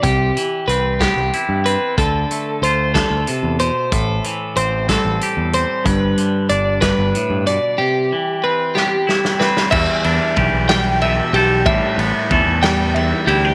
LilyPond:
<<
  \new Staff \with { instrumentName = "Clean electric guitar" } { \time 6/8 \key a \minor \tempo 4. = 62 g'4 b'8 g'4 b'8 | a'4 c''8 a'4 c''8 | a'4 c''8 a'4 c''8 | b'4 d''8 b'4 d''8 |
g'4 b'8 g'4 b'8 | e''4 r8 g''8 e''8 g'8 | e''4 r8 g''8 e''8 g'8 | }
  \new Staff \with { instrumentName = "Clean electric guitar" } { \clef bass \time 6/8 \key a \minor << { r4 c'8 b8 e'8 c'8 | r4 f'2 | r4 c'8 g8 g'8 c'8 | r4 d'2 |
r4 c'8 b8 e'8 c'8 | g8 d'8 g'8 g4 a'8 | g8 b8 a'8 g4 e'16 g'16 | } \\ { c8 e2~ e8 | d8 a4 d8 c8 b,8 | a,8 e2~ e8 | g,8 d4 g,8 a,8 b,8 |
c8 e2~ e8 | e,4 e4 b,4 | a,4 e4 e,4 | } >> }
  \new Staff \with { instrumentName = "Fingered electric bass" } { \clef bass \time 6/8 \key a \minor c,8 r8 c,8. c,16 r16 g,8 r16 | d,8 r8 d,8. d,16 r16 e,8 r16 | a,,8 r8 a,,8. a,,16 r16 e,8 r16 | g,,8 r8 g,,8. g,,16 r16 g,8 r16 |
r2. | e,16 r16 e,16 r16 b,,16 b,,4~ b,,16 b,,8 | a,,16 r16 a,,16 r16 e,16 e,4~ e,16 d,8 | }
  \new DrumStaff \with { instrumentName = "Drums" } \drummode { \time 6/8 <hh bd>8 hh8 hh8 <hh bd sn>8 hh8 hh8 | <hh bd>8 hh8 hh8 <hh bd sn>8 hh8 hh8 | <hh bd>8 hh8 hh8 <hh bd sn>8 hh8 hh8 | <hh bd>8 hh8 hh8 <hh bd sn>8 hh8 hh8 |
r4. sn8 sn16 sn16 sn16 sn16 | <cymc bd>8 cymr8 <bd cymr>8 <cymr sn>8 cymr8 cymr8 | <bd cymr>8 cymr8 <bd cymr>8 <cymr sn>8 cymr8 cymr8 | }
>>